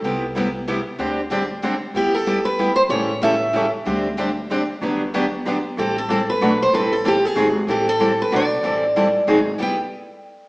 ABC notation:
X:1
M:3/4
L:1/8
Q:"Swing" 1/4=189
K:G
V:1 name="Steel-string acoustic guitar"
z6 | z6 | G A2 B2 c | ^c2 e3 z |
z6 | z6 | G A2 B2 c | B A G _A2 z |
G A2 B d2- | d4 z2 | g z4 z |]
V:2 name="Steel-string acoustic guitar"
[C,G,B,EG] z [C,G,B,EG] z [C,G,B,EG] z | [D,G,CDG] z [D,G,CDG] z [D,G,CDG] z | [G,B,EG] z [G,B,EG] z [G,B,EG] z | [^C,E,A,^CG] z [C,E,A,CG] z [C,E,A,CG] z |
[D,G,CDG] z [D,G,CDG] z [D,G,CDG] z | [D,F,B,DG] z [D,F,B,DG] z [D,F,B,DG] z | [E,G,CEA] z [E,G,CEA] z [B,,F,A,DF] z | [E,G,CEA] z [E,G,CEA] z [_E,_G,C_E_A] z |
[E,G,CEA] z [E,G,CEA] z [B,,F,A,DF] z | [E,G,CEA] z [E,G,CEA] z [_E,_G,C_E_A] z | [G,B,EG] z4 z |]
V:3 name="Steel-string acoustic guitar"
[C,G,B,EG] z [C,G,B,EG] z [C,G,B,EG] z | [D,G,CDG] z [D,G,CDG] z [D,G,CDG] z | [G,B,EG] z [G,B,EG] z [G,B,EG] z | [E,G,^CEA] z [E,G,CEA] z [E,G,CEA] z |
[D,G,CDG] z [D,G,CDG] z [D,G,CDG] z | [D,F,B,DG] z [D,F,B,DG] z [D,F,B,DG] z | [E,G,CEA] z [E,G,CEA] z [B,,F,A,DFB] z | [E,G,CEA] z [E,G,CEA] z [_E,_G,C_E_A] z |
[E,G,CEA] z [E,G,CEA] z [B,,F,A,DFB] z | [E,G,CEA] z [E,G,CEA] z [_E,_G,C_E_A] z | [G,B,EG] z4 z |]
V:4 name="Upright bass" clef=bass
C,,6 | D,,6 | G,,,6 | A,,,6 |
D,,6 | G,,,6 | A,,,4 B,,,2 | A,,,4 _A,,,2 |
A,,,4 B,,,2 | A,,,4 _A,,,2 | G,,, z4 z |]